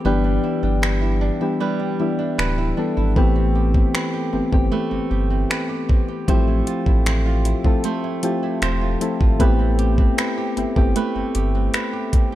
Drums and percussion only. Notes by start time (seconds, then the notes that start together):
0.83 finger snap
2.39 finger snap
3.16 kick
3.74 kick
3.95 finger snap
4.53 kick
5.51 finger snap
5.89 kick
6.28 kick, closed hi-hat
6.67 closed hi-hat
6.86 kick
7.06 finger snap, closed hi-hat
7.45 closed hi-hat
7.64 kick
7.84 closed hi-hat
8.23 closed hi-hat
8.62 finger snap, closed hi-hat
9.01 closed hi-hat
9.21 kick
9.40 kick, closed hi-hat
9.79 closed hi-hat
9.98 kick
10.18 finger snap, closed hi-hat
10.57 closed hi-hat
10.76 kick
10.96 closed hi-hat
11.35 closed hi-hat
11.74 finger snap, closed hi-hat
12.13 kick, closed hi-hat